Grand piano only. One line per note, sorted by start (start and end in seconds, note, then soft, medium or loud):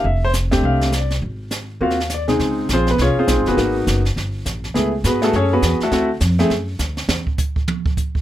0.06 0.22 E5 medium
0.25 0.31 C5 medium
0.51 0.90 A3 medium
0.51 0.90 C4 medium
0.51 0.90 D4 medium
0.51 0.91 G4 medium
0.65 0.91 F5 medium
0.96 1.12 D5 medium
1.81 1.97 A#3 medium
1.81 1.97 C4 medium
1.81 1.97 F4 medium
1.81 1.97 F#4 medium
1.81 2.09 F5 medium
2.14 2.24 D5 medium
2.28 2.67 C#3 medium
2.28 2.66 G#3 medium
2.28 2.67 C4 medium
2.28 2.67 D#4 medium
2.28 2.67 G#4 medium
2.73 2.88 C4 medium
2.73 2.89 F4 medium
2.73 2.88 G#4 medium
2.73 2.88 C5 medium
2.90 3.00 B3 medium
2.90 3.00 B4 medium
3.02 3.17 C#4 medium
3.02 3.17 F4 medium
3.02 3.17 G#4 medium
3.02 3.17 C#5 medium
3.19 3.26 C4 medium
3.19 3.26 F4 medium
3.19 3.45 G#4 medium
3.19 3.45 C5 medium
3.27 3.57 G#3 medium
3.27 3.57 C4 medium
3.27 3.56 D#4 medium
3.27 3.57 F4 medium
3.48 3.56 B3 medium
3.48 3.56 F#4 medium
3.48 3.75 G#4 medium
3.48 3.74 B4 medium
3.57 4.01 A#3 medium
3.57 4.01 B3 medium
3.57 4.01 D#4 medium
3.57 4.01 F#4 medium
4.74 4.90 A3 medium
4.74 4.90 B3 medium
4.74 4.91 E4 medium
4.74 4.91 G#4 medium
5.06 5.21 B3 medium
5.06 5.23 F#4 medium
5.06 5.21 G#4 medium
5.06 5.22 B4 medium
5.22 5.32 A3 medium
5.22 5.32 B3 medium
5.22 5.32 E4 medium
5.22 5.34 F#4 medium
5.22 5.33 G#4 medium
5.22 5.34 A4 medium
5.36 5.52 C#4 medium
5.36 5.52 G#4 medium
5.36 5.52 A4 medium
5.36 5.52 C#5 medium
5.53 5.80 B3 medium
5.53 5.79 F#4 medium
5.53 5.79 G#4 medium
5.53 5.79 B4 medium
5.83 5.90 A3 medium
5.83 5.91 E4 medium
5.83 5.91 F#4 medium
5.83 6.09 A4 medium
5.92 6.08 A3 medium
5.92 6.08 C4 medium
5.92 6.08 E4 medium
5.92 6.08 F#4 medium
6.39 6.49 A3 medium
6.39 6.50 C4 medium
6.39 6.50 E4 medium
6.39 6.50 G#4 medium